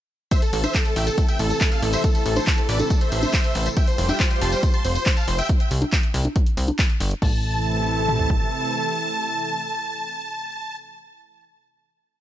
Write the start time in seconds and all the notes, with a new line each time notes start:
0.31 C3 E3 A3 E4 A4 C5 E5, kick, closed hi-hat, tambourine
0.42 A4, closed hi-hat, tambourine
0.53 A1 A4, open hi-hat
0.64 C5 E5, closed hi-hat, tambourine, high conga
0.74 A4, kick, clap, closed hi-hat, tambourine
0.85 A4, closed hi-hat, tambourine
0.96 A1 E5 G5, open hi-hat
1.07 A4, closed hi-hat, tambourine
1.18 A4, kick, closed hi-hat, tambourine
1.29 E5 G5, closed hi-hat, tambourine
1.39 A1 A4, open hi-hat
1.50 A4, closed hi-hat, tambourine
1.60 A4, kick, clap, closed hi-hat, tambourine
1.72 A4 F5, closed hi-hat, tambourine
1.82 A1 A4, open hi-hat
1.93 C5 E5, closed hi-hat, tambourine
2.04 A4, kick, closed hi-hat, tambourine
2.15 A4, closed hi-hat, tambourine
2.26 A1 A4, open hi-hat
2.36 A4 C5, closed hi-hat, tambourine, high conga
2.47 A4, kick, clap, closed hi-hat, tambourine
2.58 A4, closed hi-hat, tambourine
2.69 A1 B4 D5, open hi-hat
2.80 A4, closed hi-hat, tambourine, high conga
2.90 A4, kick, closed hi-hat, tambourine
3.01 C5 E5, closed hi-hat, tambourine
3.12 A1, open hi-hat
3.23 closed hi-hat, tambourine, high conga
3.34 kick, clap, closed hi-hat, tambourine
3.44 closed hi-hat, tambourine
3.55 A1, open hi-hat
3.66 closed hi-hat, tambourine
3.77 G3 F4 G4 E5 G5, kick, closed hi-hat, tambourine
3.87 C5, closed hi-hat, tambourine
3.98 F1 C5, open hi-hat
4.09 E5 G5, closed hi-hat, tambourine, high conga
4.20 C5, kick, clap, closed hi-hat, tambourine
4.31 C5, closed hi-hat, tambourine
4.41 F1 A5 C6, open hi-hat
4.52 C5, closed hi-hat, tambourine
4.63 C5, kick, closed hi-hat, tambourine
4.74 A5 C6, closed hi-hat, tambourine
4.85 F1 C5, open hi-hat
4.95 C5, closed hi-hat, tambourine
5.06 C5, kick, clap, closed hi-hat, tambourine
5.17 F5 A5, closed hi-hat, tambourine
5.28 F1 C5, open hi-hat
5.38 E5 G5, closed hi-hat, tambourine
5.49 kick, closed hi-hat
5.60 closed hi-hat
5.71 C2, open hi-hat
5.82 closed hi-hat, high conga
5.93 kick, clap, closed hi-hat
6.03 closed hi-hat
6.14 C2, open hi-hat
6.25 closed hi-hat, high conga
6.36 kick, closed hi-hat
6.47 closed hi-hat
6.57 C2, open hi-hat
6.68 closed hi-hat, high conga
6.79 kick, clap, closed hi-hat
6.90 closed hi-hat
7.00 G1, open hi-hat
7.11 closed hi-hat
7.22 A1 C3 E3 A3 E4 A4 A5, kick, crash
8.08 mid tom
8.19 floor tom
8.30 kick